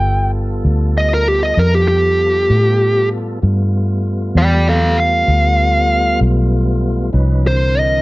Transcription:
Already playing: fingered electric bass G1, tonewheel organ G3 B3 F4 A4, lead electric guitar G5
0.65 fingered electric bass D2
0.98 lead electric guitar D#5
1.14 lead electric guitar A#4
1.28 lead electric guitar G4
1.43 lead electric guitar D#5
1.57 fingered electric bass F2, lead electric guitar A#4
1.75 lead electric guitar G4
1.88 lead electric guitar G4
2.50 fingered electric bass A2
3.42 fingered electric bass G2, tonewheel organ G3 A3 B3 F4
4.35 fingered electric bass E2, lead electric guitar D5 G5
4.69 lead electric guitar A4 F5
5.00 lead electric guitar F5
5.28 fingered electric bass D2
6.21 fingered electric bass B1
7.13 fingered electric bass C2, tonewheel organ F3 C#4 D#4 B4
7.44 tonewheel organ D3 E3 C4 A#4, lead electric guitar C5
7.79 lead electric guitar D#5

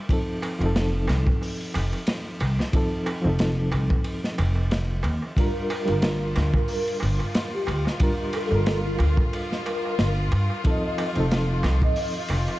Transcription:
Already playing: reed electric piano A#4
0.09 reed electric piano F3 C4 D#4 A4, kick, ride, darbuka tek
0.42 ride, darbuka tek
0.59 upright bass F1, reed electric piano F3 C4, ride, darbuka tek
0.63 reed electric piano D#4 A4
0.75 snare, ride, darbuka tek
1.08 upright bass C2, snare, ride, darbuka tek
1.27 kick, darbuka tek
1.42 open hi-hat, darbuka tek
1.61 ride
1.74 upright bass F1, ride, darbuka tek
1.93 ride, darbuka tek
2.07 snare, ride, darbuka tek
2.40 upright bass C2, ride, darbuka tek
2.59 snare, darbuka tek
2.73 reed electric piano F3 C4 D#4 A4, kick, ride, darbuka tek
3.06 ride, darbuka tek
3.22 upright bass F1, reed electric piano F3 C4, darbuka tek
3.27 reed electric piano D#4 A4
3.39 snare, ride, darbuka tek
3.72 upright bass C2, ride, darbuka tek
3.90 kick, darbuka tek
4.04 ride, darbuka tek
4.24 snare
4.38 upright bass F1, ride, darbuka tek
4.55 darbuka tek
4.71 snare, ride, darbuka tek
5.03 upright bass D#2, ride, darbuka tek
5.22 darbuka tek
5.36 reed electric piano G3 D4 F4, violin section F4, soft synth lead A#4, kick, ride, darbuka tek
5.40 reed electric piano A#4
5.70 ride, darbuka tek
5.85 upright bass G1, reed electric piano G3 D4, ride, darbuka tek
5.90 reed electric piano F4 A#4
6.02 snare, ride, darbuka tek
6.35 upright bass D2, snare, ride, darbuka tek
6.54 soft synth lead A#4, kick, darbuka tek
6.68 open hi-hat, darbuka tek
6.88 ride
7.00 upright bass G1, ride, darbuka tek
7.19 ride, darbuka tek
7.34 snare, ride, darbuka tek
7.53 soft synth lead G4
7.67 upright bass D2, ride, darbuka tek
7.85 snare, darbuka tek
7.99 reed electric piano G3 D4 F4 A#4, kick, ride, darbuka tek
8.33 soft synth lead A4, ride, darbuka tek
8.49 upright bass G1, reed electric piano G3 D4, darbuka tek
8.53 reed electric piano F4 A#4
8.66 snare, ride, darbuka tek
8.85 soft synth lead F4
8.99 upright bass D2, ride, darbuka tek
9.17 kick, darbuka tek
9.33 ride, darbuka tek
9.52 snare
9.66 soft synth lead A#4, ride, darbuka tek
9.85 darbuka tek
9.99 upright bass G1, snare, ride, darbuka tek
10.32 upright bass G2, ride, darbuka tek
10.50 darbuka tek
10.64 reed electric piano F3 C4 D#4 A4, soft synth lead D#5, kick, ride, darbuka tek
10.98 ride, darbuka tek
11.13 upright bass F1, reed electric piano F3 C4 D#4, ride, darbuka tek
11.20 reed electric piano A4
11.31 snare, ride, darbuka tek
11.63 upright bass C2, snare, ride, darbuka tek
11.82 soft synth lead D#5, kick, darbuka tek
11.96 open hi-hat, darbuka tek
12.14 ride
12.28 upright bass F1, ride, darbuka tek
12.47 ride, darbuka tek

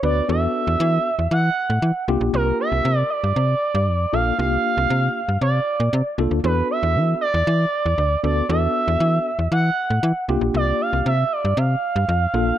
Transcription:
0.03 fm bass D2, tine electric piano B3 D4 F#4 B4, analog synth lead D5
0.29 fm bass E2, tine electric piano B3 D4 F#4 A4, analog synth lead E5
0.67 fm bass E2
0.80 fm bass E3
1.19 fm bass E2
1.31 fm bass E3, analog synth lead F#5
1.70 fm bass A2
1.82 fm bass E3
2.08 fm bass C2, tine electric piano A#3 D4 F4 G4
2.21 fm bass A#1
2.34 fm bass C2, analog synth lead A#4
2.60 analog synth lead E5
2.72 fm bass C2
2.85 fm bass C3
2.98 analog synth lead D5
3.10 analog synth lead D5
3.24 fm bass G2
3.36 fm bass C3
3.75 fm bass G2
3.88 fm bass F2
4.13 fm bass A#1, tine electric piano A#3 D4 F4 A4, analog synth lead F5
4.38 fm bass C2, tine electric piano A#3 D4 F4 G4, analog synth lead F5
4.77 fm bass C2
4.90 fm bass C3
5.29 fm bass G2
5.41 fm bass C3, analog synth lead D5
5.80 fm bass A#2
5.93 fm bass C3
6.18 fm bass C2, tine electric piano A#3 D4 F4 A4
6.31 fm bass D2
6.44 fm bass E2, tine electric piano B3 D4 F#4 A4, analog synth lead B4
6.71 analog synth lead E5
6.83 fm bass E2
6.96 fm bass E3
7.21 analog synth lead D5
7.34 fm bass E2
7.47 fm bass E3
7.86 fm bass E2
7.98 fm bass D2
8.23 fm bass D2, tine electric piano B3 D4 F#4 A4, analog synth lead D5
8.49 fm bass E2, tine electric piano B3 D4 F#4 A4, analog synth lead E5
8.88 fm bass E2
9.00 fm bass E3
9.39 fm bass E2
9.52 fm bass E3, analog synth lead F#5
9.90 fm bass A2
10.03 fm bass E3
10.28 fm bass C2, tine electric piano A#3 D4 F4 G4
10.41 fm bass A#1
10.54 fm bass C2, analog synth lead D5
10.81 analog synth lead F5
10.93 fm bass C2
11.06 fm bass C3, analog synth lead E5
11.32 analog synth lead D5
11.45 fm bass G2
11.57 fm bass C3, analog synth lead F5
11.96 fm bass G2
12.09 fm bass F2
12.34 fm bass A#1, tine electric piano A#3 D4 F4 A4

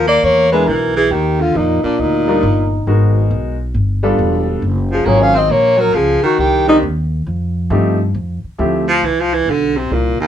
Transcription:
Already playing: upright bass D#2
0.07 baritone saxophone A#3, alto saxophone D5
0.23 upright bass E2, baritone saxophone A#3, alto saxophone C#5
0.52 baritone saxophone G#3, grand piano G#3 B3 D4 E4 A#4, alto saxophone B4
0.67 upright bass B1, baritone saxophone E3, alto saxophone A#4
0.96 baritone saxophone E3, alto saxophone G#4
1.11 upright bass D#2, baritone saxophone D#3, alto saxophone G4
1.40 baritone saxophone D3, alto saxophone F4
1.55 upright bass F2, baritone saxophone A#2, alto saxophone D#4
1.83 baritone saxophone A#2, alto saxophone D4, muted upright bass stroke
1.99 upright bass D2, baritone saxophone A#2, alto saxophone D#4
2.28 grand piano G3 D4 D#4 F4 A#4
2.43 upright bass G1
2.87 upright bass G#1, grand piano G#3 B3 D#4 F#4 A#4
3.31 upright bass B1
3.74 upright bass G1
4.03 grand piano G3 B3 D4 F4 A4
4.18 upright bass E1
4.62 upright bass F#1
4.91 baritone saxophone F3, alto saxophone G#4
5.06 upright bass G#1, grand piano F#3 A#3 C#4 F4 G#4, baritone saxophone A#3, alto saxophone C#5
5.21 baritone saxophone C#4, alto saxophone F5
5.35 baritone saxophone C4, alto saxophone D#5
5.50 upright bass A#1, baritone saxophone A#3, alto saxophone C#5
5.78 baritone saxophone F#3, alto saxophone A#4
5.94 upright bass C#2, baritone saxophone F3, alto saxophone G#4
6.23 baritone saxophone D#3, alto saxophone F#4, muted upright bass stroke
6.38 upright bass C2, baritone saxophone D#3, alto saxophone G4
6.67 baritone saxophone C3, grand piano D#3 A#3 C4 D4 G4, alto saxophone D#4
6.83 upright bass D#2
7.27 upright bass F2
7.70 upright bass G2, grand piano F3 A3 C4 D#4 G4
8.14 upright bass F2
8.44 muted upright bass stroke
8.58 upright bass D2, grand piano F3 A3 C4 E4 G4
8.88 baritone saxophone F3
9.02 upright bass C2, baritone saxophone E3
9.21 baritone saxophone F3
9.34 baritone saxophone E3
9.46 upright bass B1
9.51 baritone saxophone D3
9.77 baritone saxophone C3
9.90 upright bass C2, baritone saxophone A#2
10.21 baritone saxophone D#2

